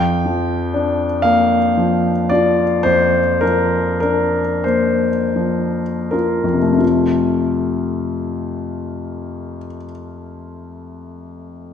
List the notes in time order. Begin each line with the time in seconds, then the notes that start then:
Already playing: F2 G5
0.25 F3
0.74 D4
1.22 A#3 F5
1.77 F3
2.30 F4 D5
2.83 F2 C5
3.41 F3 A#4
4.00 D4 A#4
4.64 A#3 C5
5.36 F3
6.11 F4 A#4
6.44 F2
6.53 C3
6.62 A3
6.72 C4
6.78 F4